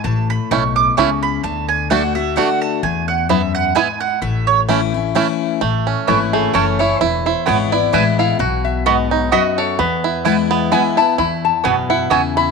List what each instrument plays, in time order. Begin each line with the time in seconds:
0.04 upright bass A1, steel-string acoustic guitar A2, mandolin A5
0.30 mandolin B5
0.51 upright bass B1, steel-string acoustic guitar B2, five-string banjo A3 C#4 E4, mandolin C#6
0.76 mandolin D6
0.97 upright bass C#2, steel-string acoustic guitar C#3, five-string banjo A3 C#4 E4, mandolin C#6
1.23 mandolin B5
1.44 upright bass D2, steel-string acoustic guitar D3, mandolin A5
1.69 mandolin G#5
1.90 steel-string acoustic guitar D3 A3 D4 F#4, five-string banjo A3 D4 F#4, mandolin F#5
2.15 steel-string acoustic guitar D4 F#4, mandolin E5
2.36 steel-string acoustic guitar D3 A3 D4 F#4, five-string banjo A3 D4 F#4, mandolin F#5
2.62 mandolin A5
2.83 upright bass E2, steel-string acoustic guitar E2, mandolin G#5
3.08 mandolin F#5
3.29 steel-string acoustic guitar F#2, five-string banjo B3 E4, mandolin E5
3.55 mandolin F#5
3.75 steel-string acoustic guitar G#2, five-string banjo B3 E4, mandolin G#5
4.00 mandolin F#5
4.22 upright bass A1, steel-string acoustic guitar A2, mandolin E5
4.47 mandolin C#5
4.68 steel-string acoustic guitar E3 A3 C#4 E4, five-string banjo A3 C#4 E4
4.94 steel-string acoustic guitar C#4 E4
5.15 steel-string acoustic guitar E3 A3 C#4 E4, five-string banjo A3 C#4 E4
5.61 upright bass A1, steel-string acoustic guitar A2, five-string banjo A3
5.87 five-string banjo C#4
6.07 upright bass G#1, steel-string acoustic guitar E3 A3 C#4 E4, mandolin A3 E4 C#5 A5, five-string banjo E4, resonator guitar played with a steel bar B4
6.33 five-string banjo A3, resonator guitar played with a steel bar G#4
6.53 upright bass F#1, steel-string acoustic guitar E3 A3 C#4 E4, mandolin A3 E4 C#5 A5, five-string banjo C#4, resonator guitar played with a steel bar A4
6.79 steel-string acoustic guitar C#4 E4, five-string banjo E4, resonator guitar played with a steel bar C#5
7.01 upright bass E1, steel-string acoustic guitar E2, five-string banjo E4, resonator guitar played with a steel bar B4
7.26 five-string banjo E4, resonator guitar played with a steel bar C5
7.46 upright bass G#1, steel-string acoustic guitar E3 G#3 B3 E4, mandolin B3 E4 B4 G#5, five-string banjo B3, resonator guitar played with a steel bar C#5
7.72 steel-string acoustic guitar B3 E4, five-string banjo E4, resonator guitar played with a steel bar D5
7.93 upright bass A1, steel-string acoustic guitar E3 G#3 B3 E4, mandolin B3 E4 B4 G#5, five-string banjo E4, resonator guitar played with a steel bar E5
8.19 five-string banjo E4, resonator guitar played with a steel bar F5
8.39 upright bass B1, steel-string acoustic guitar B2, five-string banjo F#4, resonator guitar played with a steel bar F#5
8.65 resonator guitar played with a steel bar E5
8.86 steel-string acoustic guitar G#2, mandolin B3 F#4 D#5 B5, five-string banjo B3, resonator guitar played with a steel bar D#5
9.11 five-string banjo D#4, resonator guitar played with a steel bar C#5
9.32 steel-string acoustic guitar F#2, mandolin B3 F#4 D#5 B5, five-string banjo F#4, resonator guitar played with a steel bar D#5
9.58 five-string banjo A4, resonator guitar played with a steel bar C#5
9.79 upright bass E2, steel-string acoustic guitar E2, five-string banjo B3, resonator guitar played with a steel bar B4
10.04 five-string banjo E4
10.25 steel-string acoustic guitar E3 G#3 B3 E4, mandolin B3 E4 B4 G#5, five-string banjo E4
10.51 five-string banjo B3
10.71 steel-string acoustic guitar E3 G#3 B3 E4, mandolin B3 E4 B4 G#5, five-string banjo E4, resonator guitar played with a steel bar G#5
10.97 steel-string acoustic guitar B3 E4, five-string banjo E4, resonator guitar played with a steel bar A5
11.18 upright bass E2, steel-string acoustic guitar E2, five-string banjo E4, resonator guitar played with a steel bar B5
11.45 resonator guitar played with a steel bar A5
11.64 upright bass F#2, steel-string acoustic guitar B2, mandolin B3 F#4 E5 G#5, five-string banjo B3, resonator guitar played with a steel bar G#5
11.90 five-string banjo E4, resonator guitar played with a steel bar F#5
12.10 upright bass E2, steel-string acoustic guitar C#3, mandolin B3 F#4 E5 G#5, five-string banjo E4, resonator guitar played with a steel bar G#5
12.37 five-string banjo E4, resonator guitar played with a steel bar B5